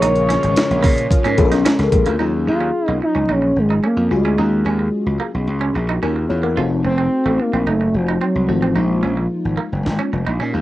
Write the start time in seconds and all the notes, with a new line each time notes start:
Already playing: C#3 F3 G#3 A#3 C#4 F4 G#4 A#4 C#5
0.02 A#1 D#4, closed hi-hat, muted conga
0.15 closed hi-hat
0.29 C#4, snare, closed hi-hat, muted conga
0.43 G#1, muted clean electric guitar stroke, closed hi-hat
0.56 snare, closed hi-hat, high conga
0.70 A#1, closed hi-hat
0.83 A#2 A#3, kick, open hi-hat
0.98 closed hi-hat
1.11 kick, closed hi-hat, muted conga
1.24 G#2 C#4, closed hi-hat
1.37 A#1 C#4 F4 G#4 A4, muted clean electric guitar stroke, kick, closed hi-hat, muted conga, low conga
1.45 A#4
1.51 B1 D#4, snare, closed hi-hat
1.65 C#4, snare, closed hi-hat, high conga
1.79 C#2, muted clean electric guitar stroke, snare, closed hi-hat
1.92 A#1, kick, closed hi-hat, high conga
2.06 D2 A#3, closed hi-hat
2.19 D#2 F#3 C#4 D#4 F4 G#4
2.47 D#2 F4, muted clean electric guitar stroke
2.61 C#4
2.88 B1 A#3
3.02 D#4, muted clean electric guitar stroke
3.15 C#2 C#4
3.29 A#1 C#4 D#4
3.42 muted clean electric guitar stroke
3.56 G#1 G#3
3.70 D#4
3.84 A#3 C#4
3.97 F2
4.10 C#2 G#3 C#4 F4 F#4 G#4, muted clean electric guitar stroke
4.25 D2 C#4
4.38 D#2 C#4 D#4 F4 F#4 G#4
4.65 D#2 C#4
4.79 muted clean electric guitar stroke
5.06 C#2
5.20 A#3
5.34 B1
5.47 C#2
5.61 C#4
5.75 A#1, muted clean electric guitar stroke
5.89 D#4
6.03 D#2 C#4 A#4
6.16 muted clean electric guitar stroke
6.29 E2 F4 C#5
6.43 A#3 A#4 F#5
6.56 F1 A3 C4 D#4 F4 F#4
6.84 F1 C4, muted clean electric guitar stroke
6.98 C4
7.25 A1 A3
7.40 A#3, muted clean electric guitar stroke
7.53 A#1 C4
7.66 F#1 A3 D#4
7.81 muted clean electric guitar stroke
7.94 F1 F3
8.08 D#4
8.21 F#3 C4
8.35 C2
8.48 G#1 F3 A3 C4 D#4 F#4, muted clean electric guitar stroke
8.62 A1 C4
8.75 A#1 G#3 A#3 D#4 F4
9.03 A#1 C#4
9.17 muted clean electric guitar stroke
9.45 G#1
9.57 A#3
9.72 F#1
9.86 G#1, snare
9.99 C#4
10.13 F1, muted clean electric guitar stroke
10.27 A#1 D#4
10.40 A#2 C#4 D#4
10.53 D#2 G#3 F4, muted clean electric guitar stroke